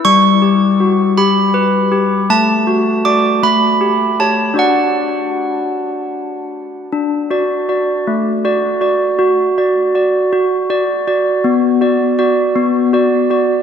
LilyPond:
\new Staff \with { instrumentName = "Handbells" } { \time 6/8 \key d \major \tempo 4. = 53 << { cis'''4. b''4. | a''4 d'''8 b''4 a''8 | fis''2~ fis''8 r8 | r2. |
r2. | r2. | } \\ { g8 g'8 fis'8 g'8 b'8 g'8 | a8 fis'8 <fis' d''>8 a8 g'8 <g' cis''>8 | <d' fis' d''>2. | d'8 <fis' d''>8 <fis' d''>8 a8 <fis' d''>8 <fis' d''>8 |
fis'8 <fis' d''>8 <fis' d''>8 fis'8 <fis' d''>8 <fis' d''>8 | b8 <fis' d''>8 <fis' d''>8 b8 <fis' d''>8 <fis' d''>8 | } >> }